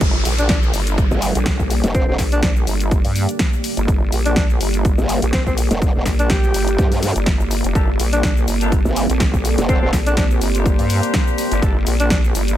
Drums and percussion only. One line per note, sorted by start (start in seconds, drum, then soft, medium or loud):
0.01 kick loud
0.01 closed hi-hat medium
0.01 crash loud
0.01 shaker soft
0.25 open hi-hat loud
0.25 shaker medium
0.38 closed hi-hat medium
0.38 shaker soft
0.49 kick loud
0.49 snare loud
0.49 closed hi-hat medium
0.49 shaker soft
0.63 shaker soft
0.74 open hi-hat loud
0.74 shaker medium
0.87 closed hi-hat medium
0.87 shaker soft
0.98 kick loud
0.98 closed hi-hat medium
0.98 shaker soft
1.11 shaker soft
1.22 open hi-hat loud
1.22 shaker medium
1.35 closed hi-hat medium
1.35 shaker soft
1.46 kick loud
1.46 snare loud
1.46 closed hi-hat medium
1.46 shaker soft
1.59 kick medium
1.59 shaker soft
1.70 open hi-hat loud
1.70 shaker medium
1.84 closed hi-hat medium
1.84 shaker soft
1.95 kick loud
1.95 closed hi-hat medium
1.95 shaker soft
2.18 kick medium
2.18 snare medium
2.18 open hi-hat loud
2.18 shaker medium
2.32 closed hi-hat medium
2.32 shaker soft
2.43 kick loud
2.43 snare loud
2.43 closed hi-hat medium
2.43 shaker soft
2.56 shaker soft
2.67 open hi-hat loud
2.67 shaker medium
2.80 closed hi-hat medium
2.80 shaker soft
2.91 kick loud
2.91 closed hi-hat medium
2.91 shaker soft
3.05 open hi-hat medium
3.05 shaker soft
3.16 open hi-hat loud
3.16 shaker medium
3.29 closed hi-hat medium
3.29 shaker soft
3.39 kick loud
3.39 snare loud
3.39 closed hi-hat medium
3.39 shaker soft
3.53 shaker soft
3.64 open hi-hat loud
3.64 shaker medium
3.77 closed hi-hat medium
3.77 shaker soft
3.88 kick loud
3.88 closed hi-hat medium
3.88 shaker soft
4.12 open hi-hat loud
4.12 shaker medium
4.26 closed hi-hat medium
4.26 shaker soft
4.36 kick loud
4.36 snare loud
4.36 closed hi-hat medium
4.36 shaker soft
4.50 shaker soft
4.61 open hi-hat loud
4.61 shaker medium
4.74 closed hi-hat medium
4.74 shaker soft
4.85 kick loud
4.85 closed hi-hat medium
4.85 shaker soft
4.98 shaker soft
5.09 open hi-hat loud
5.09 shaker medium
5.22 closed hi-hat medium
5.22 shaker soft
5.33 kick loud
5.33 snare loud
5.33 closed hi-hat medium
5.33 shaker soft
5.47 kick medium
5.47 shaker soft
5.58 open hi-hat loud
5.58 shaker medium
5.71 closed hi-hat medium
5.71 shaker soft
5.82 kick loud
5.82 closed hi-hat soft
5.82 shaker soft
6.06 kick medium
6.06 snare medium
6.06 open hi-hat loud
6.06 shaker medium
6.19 closed hi-hat medium
6.19 shaker soft
6.30 kick loud
6.30 snare loud
6.30 closed hi-hat medium
6.30 shaker soft
6.43 shaker soft
6.54 open hi-hat loud
6.54 shaker medium
6.68 closed hi-hat medium
6.68 shaker soft
6.78 kick loud
6.78 closed hi-hat medium
6.78 shaker soft
6.92 open hi-hat medium
6.92 shaker soft
7.03 open hi-hat loud
7.03 shaker medium
7.16 closed hi-hat medium
7.16 shaker soft
7.26 kick loud
7.26 snare loud
7.26 closed hi-hat medium
7.26 shaker soft
7.40 shaker soft
7.51 open hi-hat loud
7.51 shaker medium
7.64 closed hi-hat medium
7.64 shaker soft
7.75 kick loud
7.75 closed hi-hat soft
7.75 shaker soft
8.00 open hi-hat loud
8.00 shaker medium
8.13 closed hi-hat medium
8.13 shaker soft
8.23 kick loud
8.23 snare loud
8.23 closed hi-hat medium
8.23 shaker soft
8.37 shaker soft
8.48 open hi-hat loud
8.48 shaker medium
8.61 closed hi-hat medium
8.61 shaker soft
8.72 kick loud
8.72 closed hi-hat soft
8.72 shaker soft
8.85 shaker soft
8.96 open hi-hat loud
8.96 shaker medium
9.10 closed hi-hat medium
9.10 shaker soft
9.20 kick loud
9.20 snare loud
9.20 closed hi-hat medium
9.20 shaker soft
9.34 kick medium
9.34 shaker soft
9.45 open hi-hat loud
9.45 shaker medium
9.58 closed hi-hat medium
9.58 shaker soft
9.69 kick loud
9.69 closed hi-hat soft
9.69 shaker soft
9.93 kick medium
9.93 snare medium
9.93 open hi-hat loud
9.93 shaker medium
10.06 closed hi-hat medium
10.06 shaker soft
10.17 kick loud
10.17 snare loud
10.17 closed hi-hat medium
10.17 shaker soft
10.31 shaker soft
10.42 open hi-hat loud
10.42 shaker medium
10.55 closed hi-hat medium
10.55 shaker soft
10.66 kick loud
10.66 closed hi-hat medium
10.66 shaker soft
10.79 open hi-hat medium
10.79 shaker soft
10.90 open hi-hat loud
10.90 shaker medium
11.03 closed hi-hat medium
11.03 shaker soft
11.14 kick loud
11.14 snare loud
11.14 closed hi-hat medium
11.14 shaker soft
11.27 shaker soft
11.38 open hi-hat loud
11.38 shaker medium
11.52 closed hi-hat medium
11.52 shaker soft
11.62 kick loud
11.62 closed hi-hat medium
11.62 shaker soft
11.87 open hi-hat loud
11.87 shaker medium
12.00 closed hi-hat medium
12.00 shaker soft
12.10 kick loud
12.10 snare loud
12.10 closed hi-hat medium
12.10 shaker soft
12.24 shaker soft
12.35 open hi-hat loud
12.35 shaker medium
12.48 closed hi-hat medium
12.48 shaker soft